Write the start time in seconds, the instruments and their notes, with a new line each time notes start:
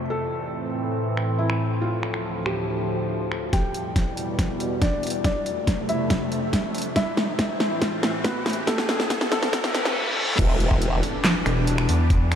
0.10 ambient pad A2 E3 C4, felt piano A4
1.17 finger snap
1.39 felt piano E4
1.50 finger snap
1.81 ambient pad D2 F3, felt piano F4
2.03 finger snap
2.14 finger snap
2.46 felt piano G4, finger snap
3.32 finger snap
3.53 ambient pad E2 B2 G3, felt piano G4 G5, kick, snare, closed hi-hat, riser
3.74 closed hi-hat
3.96 kick, snare, closed hi-hat
4.17 closed hi-hat
4.39 kick, snare, closed hi-hat
4.60 closed hi-hat
4.82 felt piano D4 D5, kick, snare, closed hi-hat
5.03 closed hi-hat
5.07 closed hi-hat
5.10 closed hi-hat
5.24 ambient pad F2 C3 A3, felt piano D4 D5, kick, snare, closed hi-hat
5.46 closed hi-hat
5.67 kick, snare, closed hi-hat
5.89 felt piano E4 E5, closed hi-hat
6.10 kick, snare, closed hi-hat
6.32 closed hi-hat
6.53 kick, snare, closed hi-hat
6.75 closed hi-hat
6.78 closed hi-hat
6.82 closed hi-hat
6.96 ambient pad A2 E3 C4, felt piano E4 E5, kick, snare, closed hi-hat
7.17 snare, closed hi-hat
7.39 kick, snare, closed hi-hat
7.60 snare, closed hi-hat
7.82 kick, snare, closed hi-hat
8.03 snare, closed hi-hat
8.24 felt piano B3 B4, kick, snare, closed hi-hat
8.46 snare, closed hi-hat
8.50 closed hi-hat
8.53 closed hi-hat
8.67 ambient pad D2 F3, felt piano A3 A4, kick, snare, closed hi-hat
8.78 snare
8.89 snare, closed hi-hat
9.00 snare, closed hi-hat
9.10 kick, snare, closed hi-hat
9.21 snare
9.32 felt piano A3 A4, snare, closed hi-hat
9.43 snare
9.53 kick, snare, closed hi-hat, reverse cymbal
9.64 snare
9.75 snare, closed hi-hat
9.85 snare
10.39 wobble bass E1, ambient pad E3 D4 G4, kick, closed hi-hat, crash, impact
10.60 closed hi-hat
10.71 kick
10.82 closed hi-hat
11.03 open hi-hat
11.24 snare, clap, closed hi-hat
11.46 wobble bass E1, finger snap, closed hi-hat
11.67 closed hi-hat
11.78 finger snap
11.89 wobble bass E2, open hi-hat
12.10 kick, closed hi-hat
12.32 finger snap, closed hi-hat